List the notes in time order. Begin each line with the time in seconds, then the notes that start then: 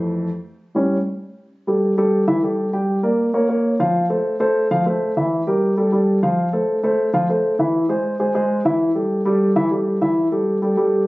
Already playing: F2 E3 A3
0.75 A2 G3 C#4
1.67 G3 G4 A4
1.98 G3 G4 A4
2.28 E3 E4 E5
2.43 G3 G4 A4
2.73 G3 G4 G5
3.03 A#3 A#4 D5
3.33 A#3 A#4 C#5
3.49 A#3 A#4 C#5
3.80 F3 F4 F5
4.10 A3 A4 C5
4.40 A3 A4 C5
4.71 F3 F4 F5
4.86 A3 A4 C5
5.17 E3 E4 E5
5.47 G3 G4 A#4
5.77 G3 G4 A4
5.92 G3 G4 A4
6.23 F3 F4 F5
6.53 A3 A4 C5
6.83 A3 A4 C5
7.13 F3 F4 F5
7.29 A3 A4 C5
7.59 E3 E4 E5
7.89 G#3 G#4 C5
8.19 G#3 G#4 C5
8.35 G#3 G#4 C5
8.65 E3 E4 E5
8.95 G3 G4 A4
9.25 G3 G4 A4
9.56 E3 E4 E5
9.71 G3 G4 A4
10.01 E3 E4 E5
10.32 G3 G4 A4
10.62 G3 G4 A4
10.77 G3 G4 A4